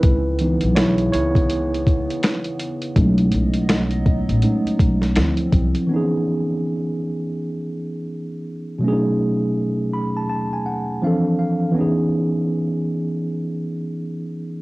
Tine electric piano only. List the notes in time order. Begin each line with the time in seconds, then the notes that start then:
Already playing: E4 B4
0.40 E3 B3 D#4
0.76 E4 C#5
1.12 E4 C#5
2.96 G#3 A3 C#4 D#4
4.43 G#3 A3 C#4 D#4
5.16 F3 C4 E4
5.87 E3 B3
5.92 C#4 D#4
5.96 G#4
8.79 B2 F#3
8.83 A3 C#4 D4
8.88 G#4
8.93 D#4
9.94 B5
10.17 A5
10.30 A5
10.53 G#5
10.66 F#5
11.02 E3 F3 C4 D4 F5
11.07 A4
11.39 F5
11.72 E3 B3
11.76 C#4 D#4
11.81 G#4